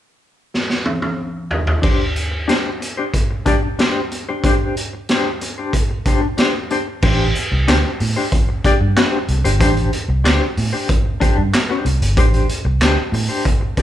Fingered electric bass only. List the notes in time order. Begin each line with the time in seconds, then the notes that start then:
7.03 A1
7.52 C2
7.69 D2
8.01 A2
8.64 muted fingered electric bass stroke
8.81 G2
9.29 C2
9.44 G1
9.61 A1
10.08 C2
10.25 D2
10.58 A2
11.21 muted fingered electric bass stroke
11.38 G2
11.85 C2
12.01 G1
12.17 A1
12.65 C2
12.81 D2
13.12 A2
13.77 muted fingered electric bass stroke